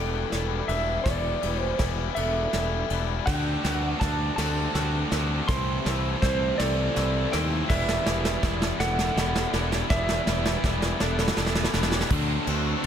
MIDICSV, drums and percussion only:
0, 0, Header, 1, 2, 480
1, 0, Start_track
1, 0, Key_signature, 1, "minor"
1, 0, Tempo, 736196
1, 690, Time_signature, 6, 3, 24, 8
1, 8387, End_track
2, 0, Start_track
2, 0, Title_t, "Drums"
2, 210, Note_on_c, 9, 38, 62
2, 210, Note_on_c, 9, 51, 68
2, 275, Note_off_c, 9, 38, 0
2, 275, Note_off_c, 9, 51, 0
2, 449, Note_on_c, 9, 51, 70
2, 514, Note_off_c, 9, 51, 0
2, 689, Note_on_c, 9, 36, 90
2, 689, Note_on_c, 9, 38, 64
2, 689, Note_on_c, 9, 51, 90
2, 754, Note_off_c, 9, 38, 0
2, 754, Note_off_c, 9, 51, 0
2, 755, Note_off_c, 9, 36, 0
2, 930, Note_on_c, 9, 51, 68
2, 995, Note_off_c, 9, 51, 0
2, 1167, Note_on_c, 9, 38, 69
2, 1167, Note_on_c, 9, 51, 76
2, 1170, Note_on_c, 9, 36, 70
2, 1232, Note_off_c, 9, 38, 0
2, 1232, Note_off_c, 9, 51, 0
2, 1235, Note_off_c, 9, 36, 0
2, 1409, Note_on_c, 9, 51, 88
2, 1475, Note_off_c, 9, 51, 0
2, 1650, Note_on_c, 9, 38, 65
2, 1650, Note_on_c, 9, 51, 71
2, 1715, Note_off_c, 9, 38, 0
2, 1715, Note_off_c, 9, 51, 0
2, 1890, Note_on_c, 9, 51, 70
2, 1956, Note_off_c, 9, 51, 0
2, 2131, Note_on_c, 9, 38, 69
2, 2131, Note_on_c, 9, 49, 85
2, 2133, Note_on_c, 9, 36, 95
2, 2196, Note_off_c, 9, 38, 0
2, 2196, Note_off_c, 9, 49, 0
2, 2198, Note_off_c, 9, 36, 0
2, 2376, Note_on_c, 9, 38, 79
2, 2376, Note_on_c, 9, 51, 73
2, 2441, Note_off_c, 9, 38, 0
2, 2441, Note_off_c, 9, 51, 0
2, 2615, Note_on_c, 9, 36, 72
2, 2615, Note_on_c, 9, 38, 79
2, 2615, Note_on_c, 9, 51, 71
2, 2680, Note_off_c, 9, 36, 0
2, 2681, Note_off_c, 9, 38, 0
2, 2681, Note_off_c, 9, 51, 0
2, 2856, Note_on_c, 9, 38, 79
2, 2856, Note_on_c, 9, 51, 102
2, 2921, Note_off_c, 9, 38, 0
2, 2921, Note_off_c, 9, 51, 0
2, 3096, Note_on_c, 9, 38, 80
2, 3096, Note_on_c, 9, 51, 67
2, 3162, Note_off_c, 9, 38, 0
2, 3162, Note_off_c, 9, 51, 0
2, 3336, Note_on_c, 9, 38, 79
2, 3336, Note_on_c, 9, 51, 67
2, 3401, Note_off_c, 9, 38, 0
2, 3401, Note_off_c, 9, 51, 0
2, 3577, Note_on_c, 9, 36, 103
2, 3577, Note_on_c, 9, 38, 82
2, 3577, Note_on_c, 9, 51, 84
2, 3642, Note_off_c, 9, 36, 0
2, 3642, Note_off_c, 9, 38, 0
2, 3642, Note_off_c, 9, 51, 0
2, 3821, Note_on_c, 9, 38, 90
2, 3821, Note_on_c, 9, 51, 70
2, 3886, Note_off_c, 9, 38, 0
2, 3886, Note_off_c, 9, 51, 0
2, 4058, Note_on_c, 9, 36, 85
2, 4061, Note_on_c, 9, 38, 91
2, 4061, Note_on_c, 9, 51, 67
2, 4123, Note_off_c, 9, 36, 0
2, 4126, Note_off_c, 9, 38, 0
2, 4126, Note_off_c, 9, 51, 0
2, 4300, Note_on_c, 9, 38, 86
2, 4300, Note_on_c, 9, 51, 95
2, 4366, Note_off_c, 9, 38, 0
2, 4366, Note_off_c, 9, 51, 0
2, 4539, Note_on_c, 9, 38, 81
2, 4539, Note_on_c, 9, 51, 71
2, 4604, Note_off_c, 9, 38, 0
2, 4604, Note_off_c, 9, 51, 0
2, 4780, Note_on_c, 9, 38, 91
2, 4780, Note_on_c, 9, 51, 78
2, 4845, Note_off_c, 9, 38, 0
2, 4845, Note_off_c, 9, 51, 0
2, 5019, Note_on_c, 9, 36, 96
2, 5020, Note_on_c, 9, 38, 85
2, 5020, Note_on_c, 9, 49, 92
2, 5084, Note_off_c, 9, 36, 0
2, 5085, Note_off_c, 9, 38, 0
2, 5085, Note_off_c, 9, 49, 0
2, 5141, Note_on_c, 9, 38, 91
2, 5206, Note_off_c, 9, 38, 0
2, 5257, Note_on_c, 9, 38, 102
2, 5322, Note_off_c, 9, 38, 0
2, 5378, Note_on_c, 9, 38, 93
2, 5444, Note_off_c, 9, 38, 0
2, 5496, Note_on_c, 9, 38, 95
2, 5497, Note_on_c, 9, 36, 79
2, 5561, Note_off_c, 9, 38, 0
2, 5562, Note_off_c, 9, 36, 0
2, 5619, Note_on_c, 9, 38, 101
2, 5684, Note_off_c, 9, 38, 0
2, 5738, Note_on_c, 9, 38, 101
2, 5803, Note_off_c, 9, 38, 0
2, 5860, Note_on_c, 9, 38, 91
2, 5925, Note_off_c, 9, 38, 0
2, 5982, Note_on_c, 9, 38, 101
2, 6047, Note_off_c, 9, 38, 0
2, 6099, Note_on_c, 9, 38, 100
2, 6165, Note_off_c, 9, 38, 0
2, 6217, Note_on_c, 9, 38, 106
2, 6282, Note_off_c, 9, 38, 0
2, 6338, Note_on_c, 9, 38, 88
2, 6403, Note_off_c, 9, 38, 0
2, 6456, Note_on_c, 9, 36, 101
2, 6456, Note_on_c, 9, 38, 104
2, 6521, Note_off_c, 9, 38, 0
2, 6522, Note_off_c, 9, 36, 0
2, 6576, Note_on_c, 9, 38, 92
2, 6642, Note_off_c, 9, 38, 0
2, 6696, Note_on_c, 9, 38, 114
2, 6761, Note_off_c, 9, 38, 0
2, 6816, Note_on_c, 9, 38, 120
2, 6882, Note_off_c, 9, 38, 0
2, 6936, Note_on_c, 9, 36, 80
2, 6937, Note_on_c, 9, 38, 102
2, 7001, Note_off_c, 9, 36, 0
2, 7002, Note_off_c, 9, 38, 0
2, 7056, Note_on_c, 9, 38, 103
2, 7121, Note_off_c, 9, 38, 0
2, 7173, Note_on_c, 9, 38, 101
2, 7238, Note_off_c, 9, 38, 0
2, 7294, Note_on_c, 9, 38, 100
2, 7352, Note_off_c, 9, 38, 0
2, 7352, Note_on_c, 9, 38, 116
2, 7412, Note_off_c, 9, 38, 0
2, 7412, Note_on_c, 9, 38, 104
2, 7474, Note_off_c, 9, 38, 0
2, 7474, Note_on_c, 9, 38, 97
2, 7532, Note_off_c, 9, 38, 0
2, 7532, Note_on_c, 9, 38, 115
2, 7591, Note_off_c, 9, 38, 0
2, 7591, Note_on_c, 9, 38, 109
2, 7652, Note_off_c, 9, 38, 0
2, 7652, Note_on_c, 9, 38, 115
2, 7712, Note_off_c, 9, 38, 0
2, 7712, Note_on_c, 9, 38, 123
2, 7769, Note_off_c, 9, 38, 0
2, 7769, Note_on_c, 9, 38, 108
2, 7829, Note_off_c, 9, 38, 0
2, 7829, Note_on_c, 9, 38, 106
2, 7891, Note_on_c, 9, 57, 110
2, 7893, Note_on_c, 9, 36, 111
2, 7894, Note_off_c, 9, 38, 0
2, 7956, Note_off_c, 9, 57, 0
2, 7958, Note_off_c, 9, 36, 0
2, 8130, Note_on_c, 9, 51, 92
2, 8195, Note_off_c, 9, 51, 0
2, 8387, End_track
0, 0, End_of_file